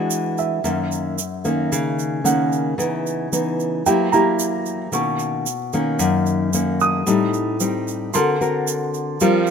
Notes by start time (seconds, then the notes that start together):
Already playing: E3 G#3 D4 F#4
0.10 shaker
0.38 E5, shaker
0.64 F#2 D#3 A#3 C#4, shaker
0.92 shaker
1.18 shaker
1.45 D#3 A#3 C#4, shaker
1.72 C#3, shaker
1.99 shaker
2.24 D#3 A#3 C#4 F#5, shaker
2.52 shaker
2.78 C#3 E3 B3 D#4, shaker
3.06 shaker
3.32 E3 B3 D#4, shaker
3.60 shaker
3.86 F#3 A#3 E4 G4 G5, shaker
4.12 A#3 E4 G4 A#5, shaker
4.39 shaker
4.66 shaker
4.92 B2 D#3 A#3 C#4 C#6, shaker
5.19 shaker
5.46 shaker
5.73 D#3 A#3 C#4, shaker
5.99 F#2, shaker
6.26 shaker
6.53 D#3 A#3 C#4, shaker
6.80 D#6, shaker
7.06 A2 G3 C4 D#4, shaker
7.34 shaker
7.60 G3 C4 D#4, shaker
7.88 shaker
8.14 D3 C4 F#4 A#4 C6, shaker
8.41 C4 F#4 A#4, shaker
8.67 shaker
8.94 shaker
9.20 F3 G3 C4 F4 A#4, shaker
9.47 shaker